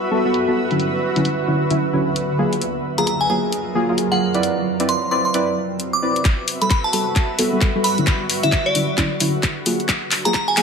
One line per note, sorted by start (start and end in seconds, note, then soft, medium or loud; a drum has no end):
0.00 0.80 G3 medium
0.00 2.39 F#4 medium
0.00 2.39 B4 medium
0.00 2.39 E5 medium
0.11 0.23 G3 medium
0.11 0.23 B3 medium
0.11 0.23 F#4 medium
0.11 0.23 A4 loud
0.25 0.45 G3 medium
0.25 0.45 B3 medium
0.25 0.45 F#4 medium
0.25 0.45 A4 medium
0.34 closed hi-hat medium
0.48 0.65 G3 medium
0.48 0.65 B3 medium
0.48 0.65 F#4 medium
0.48 0.65 A4 medium
0.71 0.88 D3 medium
0.71 0.88 F#3 medium
0.71 0.88 C#4 medium
0.71 0.88 E4 medium
0.71 closed hi-hat soft
0.80 2.39 D3 medium
0.80 closed hi-hat medium
1.16 1.25 D3 medium
1.16 1.25 F#3 medium
1.16 1.25 C#4 medium
1.16 1.25 E4 medium
1.16 closed hi-hat medium
1.25 closed hi-hat medium
1.48 1.62 D3 medium
1.48 1.62 F#3 medium
1.48 1.62 C#4 medium
1.48 1.62 E4 medium
1.70 1.84 D3 medium
1.70 1.84 F#3 medium
1.70 1.84 C#4 medium
1.70 1.84 E4 loud
1.70 closed hi-hat medium
1.93 2.07 D3 loud
1.93 2.07 F#3 medium
1.93 2.07 C#4 medium
1.93 2.07 E4 loud
2.16 closed hi-hat medium
2.39 2.53 F#3 medium
2.39 4.43 F#3 medium
2.39 2.53 A#3 medium
2.39 2.53 F4 medium
2.39 2.53 G#4 medium
2.46 4.43 F4 medium
2.53 closed hi-hat soft
2.60 4.43 A#4 medium
2.60 closed hi-hat medium
2.73 4.43 D#5 medium
2.98 3.07 F#3 medium
2.98 3.07 A#3 medium
2.98 3.07 F4 medium
2.98 3.07 G#4 medium
2.98 3.04 A#5 medium
2.98 closed hi-hat medium
3.07 3.16 A#5 medium
3.07 closed hi-hat medium
3.21 3.26 G#5 medium
3.30 3.49 F#3 medium
3.30 3.49 A#3 medium
3.30 3.49 F4 medium
3.30 3.49 G#4 loud
3.30 3.38 G#5 medium
3.52 closed hi-hat medium
3.75 3.87 F#3 loud
3.75 3.87 A#3 medium
3.75 3.87 F4 medium
3.75 3.87 G#4 loud
3.89 4.08 F#3 medium
3.89 4.08 A#3 medium
3.89 4.08 F4 medium
3.89 4.08 G#4 medium
3.98 closed hi-hat medium
4.12 4.29 F#3 medium
4.12 4.29 A#3 medium
4.12 4.29 F4 medium
4.12 4.29 G#4 medium
4.12 4.26 F#5 medium
4.34 4.52 C4 medium
4.34 4.52 E4 medium
4.34 4.52 B4 medium
4.34 4.52 D5 medium
4.34 closed hi-hat soft
4.43 6.25 C4 medium
4.43 closed hi-hat medium
4.64 9.66 F#4 medium
4.77 4.89 C4 medium
4.77 4.89 E4 medium
4.77 9.66 B4 medium
4.77 4.89 B4 medium
4.77 4.89 D5 medium
4.77 closed hi-hat medium
4.89 5.06 C6 medium
4.89 closed hi-hat medium
5.10 5.25 C4 medium
5.10 5.25 E4 medium
5.10 5.25 B4 medium
5.10 5.25 D5 medium
5.10 9.66 E5 medium
5.10 5.20 C6 medium
5.25 5.31 C6 medium
5.34 5.48 C4 medium
5.34 5.48 E4 medium
5.34 5.48 B4 medium
5.34 5.48 D5 loud
5.34 closed hi-hat medium
5.80 closed hi-hat medium
5.93 6.25 D6 medium
6.02 6.16 C4 medium
6.02 6.16 E4 medium
6.02 6.16 B4 medium
6.02 6.16 D5 medium
6.16 closed hi-hat soft
6.25 8.07 G3 medium
6.25 kick medium
6.25 clap soft
6.25 closed hi-hat medium
6.48 open hi-hat loud
6.62 6.71 G3 medium
6.62 6.71 B3 medium
6.62 6.71 F#4 medium
6.62 6.71 A4 medium
6.62 6.67 B5 medium
6.62 closed hi-hat medium
6.70 6.79 B5 medium
6.70 kick loud
6.70 clap soft
6.70 closed hi-hat medium
6.84 6.90 A5 medium
6.93 7.12 G3 medium
6.93 7.12 B3 medium
6.93 7.12 F#4 medium
6.93 7.12 A4 loud
6.93 7.02 A5 medium
6.93 open hi-hat medium
7.16 kick medium
7.16 clap soft
7.16 closed hi-hat medium
7.39 7.50 G3 loud
7.39 7.50 B3 medium
7.39 7.50 F#4 medium
7.39 7.50 A4 loud
7.39 open hi-hat loud
7.53 7.72 G3 medium
7.53 7.72 B3 medium
7.53 7.72 F#4 medium
7.53 7.72 A4 loud
7.61 kick medium
7.61 clap medium
7.61 closed hi-hat medium
7.75 7.93 G3 medium
7.75 7.93 B3 medium
7.75 7.93 F#4 medium
7.75 7.93 A4 medium
7.84 8.01 B5 medium
7.84 open hi-hat medium
7.98 8.15 D3 medium
7.98 8.15 F#3 medium
7.98 8.15 C#4 medium
7.98 8.15 E4 medium
7.98 closed hi-hat soft
8.07 9.66 D3 medium
8.07 kick medium
8.07 clap medium
8.07 closed hi-hat medium
8.30 open hi-hat loud
8.43 8.52 D3 medium
8.43 8.52 F#3 medium
8.43 8.52 C#4 medium
8.43 8.52 E4 loud
8.43 8.49 E5 medium
8.43 closed hi-hat medium
8.52 8.61 E5 medium
8.52 kick loud
8.52 clap medium
8.52 closed hi-hat medium
8.66 8.98 D5 medium
8.75 8.89 D3 medium
8.75 8.89 F#3 medium
8.75 8.89 C#4 medium
8.75 8.89 E4 medium
8.75 open hi-hat medium
8.98 9.12 D3 medium
8.98 9.12 F#3 medium
8.98 9.12 C#4 medium
8.98 9.12 E4 loud
8.98 kick medium
8.98 clap medium
8.98 closed hi-hat medium
9.20 9.34 D3 loud
9.20 9.34 F#3 medium
9.20 9.34 C#4 medium
9.20 9.34 E4 loud
9.20 open hi-hat loud
9.43 kick loud
9.43 clap medium
9.43 closed hi-hat medium
9.66 9.80 F#3 medium
9.66 10.62 F#3 medium
9.66 9.80 A#3 medium
9.66 9.80 F4 medium
9.66 9.80 G#4 loud
9.66 open hi-hat medium
9.80 10.62 D#5 medium
9.80 closed hi-hat soft
9.85 10.62 F4 medium
9.89 kick loud
9.89 clap medium
9.89 closed hi-hat medium
10.11 10.62 A#4 medium
10.11 clap medium
10.11 open hi-hat loud
10.25 10.34 F#3 medium
10.25 10.34 A#3 medium
10.25 10.34 F4 medium
10.25 10.34 G#4 loud
10.25 10.31 A#5 medium
10.25 closed hi-hat medium
10.34 kick loud
10.34 clap medium
10.34 closed hi-hat medium
10.48 10.54 G#5 medium
10.57 10.62 F#3 medium
10.57 10.62 A#3 medium
10.57 10.62 F4 medium
10.57 10.62 G#4 loud
10.57 10.62 G#5 medium
10.57 clap medium
10.57 open hi-hat medium